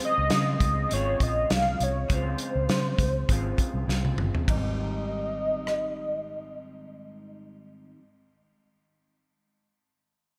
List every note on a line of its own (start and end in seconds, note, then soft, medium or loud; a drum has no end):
0.00 0.30 C#3 medium
0.00 0.31 G#3 medium
0.00 0.33 C4 medium
0.00 0.33 F4 medium
0.05 0.59 D#5 loud
0.18 0.29 C#2 medium
0.30 0.88 C#3 medium
0.30 0.55 C#3 medium
0.30 0.91 G#3 soft
0.30 0.92 C4 soft
0.30 snare loud
0.30 closed hi-hat medium
0.35 0.92 F4 medium
0.60 0.85 C#2 medium
0.60 0.95 D#5 medium
0.60 kick medium
0.60 closed hi-hat medium
0.89 1.15 G#1 medium
0.89 2.07 C#3 medium
0.89 2.11 G#3 medium
0.89 2.11 C4 medium
0.89 1.24 C#5 loud
0.89 closed hi-hat medium
0.95 2.11 F4 medium
1.20 1.44 A#1 medium
1.20 1.54 D#5 loud
1.20 kick medium
1.20 closed hi-hat medium
1.50 1.74 C2 medium
1.50 1.85 F5 loud
1.50 snare loud
1.50 closed hi-hat medium
1.80 2.04 C2 medium
1.80 2.15 C#5 medium
1.80 closed hi-hat medium
2.08 2.34 C#2 medium
2.08 3.28 C#3 medium
2.08 3.30 G#3 medium
2.08 3.31 C4 medium
2.08 kick medium
2.08 closed hi-hat medium
2.14 3.30 F4 medium
2.14 4.20 C5 loud
2.38 closed hi-hat medium
2.55 2.66 C#2 medium
2.69 2.93 C#3 medium
2.69 snare medium
2.69 closed hi-hat medium
2.98 3.22 C#2 medium
2.98 kick medium
2.98 closed hi-hat medium
3.29 3.53 G#1 medium
3.29 3.86 C#3 medium
3.29 3.87 G#3 medium
3.29 3.88 C4 medium
3.29 3.89 F4 medium
3.29 kick medium
3.29 closed hi-hat medium
3.58 kick medium
3.58 closed hi-hat medium
3.74 3.85 C2 medium
3.87 4.12 C2 medium
3.87 4.47 C#3 medium
3.87 4.50 G#3 medium
3.87 4.52 C4 medium
3.87 4.48 F4 medium
3.87 snare soft
4.05 high tom soft
4.16 4.30 G1 medium
4.16 mid tom medium
4.35 floor tom medium
4.45 7.73 G#1 medium
4.45 7.95 G#2 medium
4.45 7.98 D#3 medium
4.45 kick medium
4.45 ride medium
4.49 8.01 G3 medium
4.49 8.02 C4 medium
4.49 7.62 D#5 medium
4.55 8.05 D#4 medium
5.67 cross-stick medium